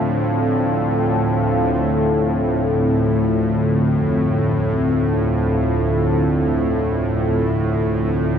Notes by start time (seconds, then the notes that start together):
Already playing: D2 A2 D3 C4 F4 A4
1.95 D2 A2
3.98 F2